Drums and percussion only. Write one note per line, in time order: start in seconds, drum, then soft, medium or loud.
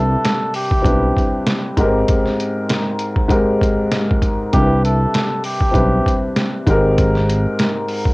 0.25 snare loud
0.25 closed hi-hat loud
0.54 open hi-hat medium
0.71 kick medium
0.84 kick loud
0.84 closed hi-hat medium
1.16 kick medium
1.16 closed hi-hat medium
1.46 snare loud
1.46 closed hi-hat medium
1.77 kick medium
1.77 closed hi-hat medium
2.08 kick loud
2.08 closed hi-hat medium
2.26 snare soft
2.40 closed hi-hat medium
2.70 snare loud
2.70 closed hi-hat loud
2.99 closed hi-hat medium
3.16 kick loud
3.29 kick loud
3.29 closed hi-hat medium
3.62 kick medium
3.62 closed hi-hat medium
3.92 snare loud
3.92 closed hi-hat medium
4.11 kick medium
4.22 kick medium
4.22 closed hi-hat medium
4.53 kick loud
4.53 closed hi-hat medium
4.85 closed hi-hat medium
5.14 snare loud
5.14 closed hi-hat loud
5.44 open hi-hat medium
5.61 kick loud
5.74 kick loud
5.74 closed hi-hat medium
6.06 kick medium
6.06 closed hi-hat medium
6.36 snare loud
6.36 closed hi-hat medium
6.67 kick medium
6.67 closed hi-hat medium
6.98 kick loud
6.98 closed hi-hat medium
7.15 snare soft
7.29 closed hi-hat medium
7.59 snare loud
7.59 closed hi-hat loud
7.88 open hi-hat medium
8.05 kick medium